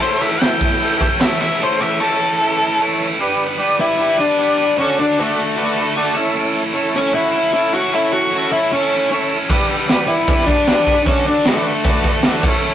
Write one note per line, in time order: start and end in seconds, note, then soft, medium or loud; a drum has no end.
0.00 0.40 A2 loud
0.00 0.41 E3 loud
0.00 0.41 A3 medium
0.00 0.43 C#4 loud
0.00 0.28 E4 medium
0.00 0.28 A4 medium
0.00 0.21 C5 loud
0.00 0.29 C#5 medium
0.00 crash medium
0.05 0.44 E4 loud
0.21 0.41 E5 loud
0.21 crash medium
0.40 1.01 A2 loud
0.40 0.79 E3 loud
0.40 0.81 A3 loud
0.40 0.82 C#4 loud
0.40 0.67 E4 medium
0.40 0.83 E4 loud
0.40 0.68 A4 medium
0.40 0.68 E5 medium
0.40 1.19 G5 medium
0.40 snare loud
0.40 crash medium
0.61 kick loud
0.61 crash medium
0.71 snare soft
0.80 1.21 E3 medium
0.80 1.03 A3 medium
0.80 1.02 C#4 medium
0.80 1.07 E4 medium
0.80 0.99 E4 medium
0.80 1.08 A4 medium
0.80 1.08 E5 medium
0.80 crash medium
1.00 1.22 A3 medium
1.00 1.23 C#4 medium
1.00 1.24 E4 medium
1.00 kick medium
1.00 crash medium
1.18 1.60 E3 medium
1.18 1.47 E4 medium
1.18 1.46 A4 medium
1.18 1.47 C#5 medium
1.18 1.40 E5 medium
1.18 snare loud
1.18 crash medium
1.23 1.43 A3 medium
1.23 1.41 C#4 medium
1.23 1.40 E4 medium
1.41 1.61 A3 medium
1.41 1.61 C#4 medium
1.41 1.63 E4 medium
1.41 1.61 E5 medium
1.41 snare soft
1.41 crash medium
1.59 1.98 A2 medium
1.59 2.00 E3 loud
1.59 2.00 A3 loud
1.59 2.01 C#4 loud
1.59 1.87 E4 medium
1.59 1.87 A4 medium
1.59 1.87 C#5 medium
1.63 2.02 E4 loud
1.63 1.82 C5 loud
1.81 2.00 E5 loud
1.99 2.60 A2 loud
1.99 2.39 E3 loud
1.99 2.41 A3 loud
1.99 2.42 C#4 loud
1.99 2.27 E4 medium
1.99 2.43 E4 loud
1.99 2.78 A4 loud
1.99 2.27 A4 medium
1.99 2.27 C#5 medium
2.41 2.78 E3 medium
2.41 2.62 A3 medium
2.41 2.60 C#4 medium
2.41 2.67 E4 medium
2.41 2.59 E4 medium
2.41 2.68 A4 medium
2.41 2.67 E5 medium
2.60 2.79 A3 medium
2.60 2.80 C#4 medium
2.60 2.82 E4 medium
2.79 3.18 E3 medium
2.79 3.01 A3 medium
2.79 3.00 C#4 medium
2.79 3.07 E4 loud
2.79 2.98 E4 loud
2.79 3.07 A4 medium
2.79 3.07 C#5 loud
2.99 3.20 A3 medium
2.99 3.19 C#4 medium
2.99 3.18 E4 medium
3.19 3.57 G3 medium
3.19 3.60 B3 loud
3.19 3.46 D4 loud
3.19 3.60 D4 loud
3.19 3.46 G4 medium
3.19 3.47 B4 loud
3.19 3.61 B4 loud
3.58 3.97 G3 loud
3.58 4.00 B3 loud
3.58 3.85 D4 medium
3.58 3.98 D4 loud
3.58 3.85 G4 medium
3.58 3.86 D5 loud
3.62 4.00 B4 loud
3.80 4.17 E4 loud
3.97 4.37 G3 medium
3.97 4.19 B3 medium
3.97 4.24 D4 medium
3.97 4.21 D4 medium
3.97 4.25 G4 medium
3.97 4.25 B4 medium
4.02 4.17 B4 medium
4.18 4.39 B3 medium
4.18 4.78 D4 loud
4.18 4.41 B4 medium
4.22 4.39 D4 medium
4.38 4.77 G3 medium
4.38 4.59 B3 medium
4.38 4.65 D4 medium
4.38 4.60 D4 medium
4.38 4.65 G4 medium
4.38 4.57 B4 medium
4.38 4.65 D5 medium
4.58 4.78 B3 medium
4.58 4.78 D4 medium
4.58 4.77 B4 medium
4.77 5.16 D3 loud
4.77 4.99 C#4 loud
4.77 5.18 D4 loud
4.77 5.05 D4 medium
4.77 5.19 F#4 medium
4.77 5.06 F#4 medium
4.77 5.21 A4 loud
4.77 5.06 A4 medium
5.00 5.19 D4 loud
5.17 5.55 D3 loud
5.17 6.13 A3 medium
5.17 5.44 D4 medium
5.17 5.56 D4 loud
5.17 5.44 F#4 medium
5.17 5.58 F#4 loud
5.17 5.44 A4 medium
5.21 5.59 A4 loud
5.56 5.94 D3 medium
5.56 5.83 D4 medium
5.56 5.79 D4 medium
5.56 5.83 F#4 medium
5.56 5.77 F#4 medium
5.56 5.76 A4 medium
5.56 5.84 B4 medium
5.76 5.95 D4 medium
5.76 5.97 F#4 medium
5.76 5.98 A4 medium
5.76 5.95 B5 medium
5.95 6.14 D3 medium
5.95 6.16 D4 loud
5.95 6.15 D4 medium
5.95 6.16 F#4 medium
5.95 6.15 F#4 medium
5.95 6.16 A4 loud
5.95 6.14 A4 medium
5.95 6.15 A5 medium
6.14 6.35 A3 medium
6.14 6.63 C#4 medium
6.14 6.35 C#4 medium
6.14 6.36 E4 medium
6.14 6.63 E4 medium
6.14 6.37 A4 loud
6.14 6.64 A4 loud
6.14 6.35 E5 medium
6.18 6.33 A2 medium
6.34 6.73 A2 medium
6.34 6.74 A3 loud
6.34 6.75 C#4 medium
6.34 6.76 E4 loud
6.34 6.77 A4 loud
6.73 7.33 A2 loud
6.73 7.12 A3 loud
6.73 7.00 C#4 medium
6.73 7.14 C#4 loud
6.73 7.01 E4 medium
6.73 7.14 E4 loud
6.73 7.01 A4 loud
6.77 7.15 A4 loud
6.96 7.14 C#4 medium
7.10 7.52 A3 medium
7.10 7.39 C#4 medium
7.10 7.40 E4 medium
7.10 7.39 F#4 medium
7.15 7.34 C#4 medium
7.15 7.51 E4 loud
7.15 7.33 E4 medium
7.15 7.31 A4 medium
7.32 7.54 C#4 medium
7.32 7.54 E4 medium
7.32 7.56 A4 medium
7.53 7.92 A3 medium
7.53 7.80 C#4 medium
7.53 7.75 C#4 medium
7.53 7.74 E4 loud
7.53 7.80 E4 medium
7.53 7.73 E4 medium
7.53 7.81 A4 medium
7.53 7.71 A4 medium
7.72 7.92 C#4 medium
7.72 7.93 E4 medium
7.72 7.93 F#4 loud
7.72 7.94 A4 medium
7.92 8.30 A2 loud
7.92 8.32 A3 medium
7.92 8.19 C#4 medium
7.92 8.32 C#4 loud
7.92 8.19 E4 medium
7.92 8.11 E4 loud
7.92 8.32 E4 loud
7.92 8.19 A4 medium
7.92 8.33 A4 loud
8.12 8.49 F#4 loud
8.31 8.90 A2 loud
8.31 8.70 A3 loud
8.31 8.71 C#4 loud
8.31 8.59 C#4 medium
8.31 8.73 E4 loud
8.31 8.74 A4 loud
8.31 8.60 A4 medium
8.35 8.60 E4 medium
8.52 8.72 E4 loud
8.71 9.10 A3 medium
8.71 8.94 C#4 medium
8.71 9.08 C#4 medium
8.71 8.99 C#4 medium
8.71 8.93 E4 medium
8.71 8.99 E4 medium
8.71 8.91 A4 medium
8.71 8.99 A4 medium
8.92 9.11 C#4 medium
8.92 9.12 E4 medium
8.92 9.13 A4 medium
9.11 9.48 A3 medium
9.11 9.37 C#4 medium
9.11 9.33 C#4 medium
9.11 9.37 E4 medium
9.11 9.32 E4 medium
9.11 9.38 A4 medium
9.11 9.30 A4 medium
9.31 9.50 C#4 medium
9.31 9.50 E4 medium
9.31 9.49 A4 medium
9.49 9.87 G3 medium
9.49 9.90 B3 loud
9.49 9.75 D4 loud
9.49 9.89 D4 medium
9.49 9.76 G4 medium
9.49 9.76 B4 loud
9.49 9.91 B4 loud
9.49 kick loud
9.49 crash loud
9.87 10.27 G3 medium
9.87 10.29 B3 loud
9.87 10.14 D4 loud
9.87 10.29 D4 loud
9.87 10.15 G4 medium
9.87 10.15 B4 loud
9.87 snare loud
9.87 open hi-hat medium
9.92 10.30 B4 loud
10.08 10.46 E4 loud
10.28 10.66 G3 medium
10.28 10.49 B3 medium
10.28 10.55 D4 medium
10.28 10.51 D4 medium
10.28 10.55 G4 medium
10.28 10.55 B4 medium
10.28 10.48 B4 medium
10.28 kick loud
10.28 open hi-hat medium
10.38 snare soft
10.46 11.02 D4 loud
10.46 10.69 B4 medium
10.46 kick medium
10.51 10.68 B3 medium
10.51 10.67 D4 medium
10.67 11.05 G3 medium
10.67 10.87 B3 medium
10.67 10.88 D4 medium
10.67 10.94 D4 medium
10.67 10.95 G4 medium
10.67 10.95 B4 medium
10.67 10.85 B4 medium
10.67 snare loud
10.67 open hi-hat medium
10.86 11.06 B3 medium
10.86 11.06 D4 medium
10.86 11.05 B4 medium
10.86 kick medium
11.05 11.43 D3 medium
11.05 11.25 C#4 loud
11.05 11.44 D4 loud
11.05 11.46 F#4 loud
11.05 11.48 A4 loud
11.05 kick loud
11.05 open hi-hat medium
11.09 11.34 D4 medium
11.09 11.34 F#4 medium
11.09 11.35 A4 medium
11.28 11.47 D4 loud
11.44 11.83 D3 loud
11.44 12.41 A3 medium
11.44 11.84 D4 loud
11.44 11.72 D4 medium
11.44 11.85 F#4 loud
11.44 11.73 F#4 medium
11.44 11.73 B4 medium
11.44 snare loud
11.44 open hi-hat medium
11.48 11.88 A4 loud
11.84 12.22 D3 medium
11.84 12.11 D4 medium
11.84 12.07 D4 medium
11.84 12.05 F#4 medium
11.84 12.12 F#4 medium
11.84 12.12 B4 medium
11.84 kick loud
11.84 open hi-hat medium
11.88 12.04 A4 medium
12.04 12.24 D4 medium
12.04 12.25 F#4 medium
12.04 12.27 A4 medium
12.04 12.24 A5 medium
12.04 kick medium
12.23 12.42 D3 medium
12.23 12.43 D4 medium
12.23 12.44 D4 loud
12.23 12.44 F#4 medium
12.23 12.45 A4 loud
12.23 snare loud
12.23 open hi-hat medium
12.27 12.45 F#4 medium
12.27 12.43 A4 medium
12.27 12.44 F#5 medium
12.43 12.64 A3 medium
12.43 12.64 C#4 medium
12.43 12.74 C#4 medium
12.43 12.66 E4 medium
12.43 12.74 E4 medium
12.43 12.66 A4 loud
12.43 12.74 A4 loud
12.43 kick loud
12.43 crash loud
12.47 12.63 A2 medium
12.47 12.64 C#5 medium
12.63 12.74 A2 medium
12.63 12.74 A3 medium
12.63 12.74 C#4 loud
12.63 12.74 E4 loud
12.63 12.74 A4 loud